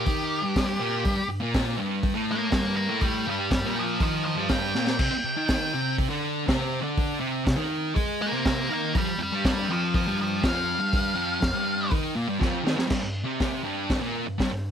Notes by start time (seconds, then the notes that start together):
Already playing: G4
0.06 D#3 D#4, kick, open hi-hat
0.42 G2 G3
0.56 kick, snare, open hi-hat
0.79 A#2 A#3
1.04 G2 G3, kick, open hi-hat
1.16 muted distorted electric guitar stroke
1.29 G2
1.40 A#2 A#3
1.54 kick, snare, open hi-hat
1.77 G2 G3
2.03 kick, open hi-hat
2.14 A2 A3
2.31 F5 A#5
2.50 G2 G3 F5, kick, snare, open hi-hat
2.54 A#5
2.77 F5 A#5
2.88 A2 A3
3.01 D5 G5, kick, open hi-hat
3.26 G2 G3 D5 G5
3.51 G2 D5 G5, kick, snare, open hi-hat
3.64 A#2 A#3
3.79 C5 F5
4.00 D#3 D#4 C5, kick, open hi-hat
4.04 F5
4.25 C5 F5
4.35 G2 G3
4.49 G5, kick, snare, open hi-hat
4.75 A#2 A#3, snare
4.87 snare
4.99 C3 C4, kick, crash
5.12 muted distorted electric guitar stroke
5.24 C3
5.37 D#3 D#4
5.48 kick, snare, open hi-hat
5.75 C3 C4
5.98 kick, open hi-hat
6.10 D3 D4
6.47 C3 C4, kick, snare, open hi-hat
6.82 D3 D4
6.97 kick, open hi-hat
7.20 C3 C4
7.44 C3, kick, snare, open hi-hat
7.56 D#3 D#4
7.94 G#3 G#4, kick, open hi-hat
8.22 F5 A#5
8.32 C3 C4
8.45 F5 A#5, kick, snare, open hi-hat
8.69 D#3 D#4 F5
8.73 A#5
8.93 F2 F3, kick, open hi-hat
8.97 D5 G5
9.06 muted distorted electric guitar stroke
9.18 F2
9.22 D5 G5
9.32 G2 G3
9.45 D5 G5, kick, snare, open hi-hat
9.69 F2 F3 C5
9.73 F5
9.94 C5 F5, kick, open hi-hat
10.07 G2 G3
10.21 C5 F5
10.43 F2 F3, kick, snare, open hi-hat
10.49 F5
10.79 G2 G3
10.93 kick, open hi-hat
11.15 F2 F3
11.41 F2, kick, snare, open hi-hat
11.54 G2 G3
11.90 D#3 D#4, kick, open hi-hat
12.15 A#2 A#3
12.28 G2 G3
12.39 F2 F3, kick, snare
12.64 D#3 D#4, snare
12.75 F2 F3, snare
12.89 G2 G3, kick, snare, crash
13.01 G2
13.24 C3 C4
13.40 kick, snare, open hi-hat
13.63 G2 G3
13.90 kick, snare, open hi-hat
14.00 A#2 A#3
14.27 G2
14.38 G2 G3, kick, snare, open hi-hat
14.51 G2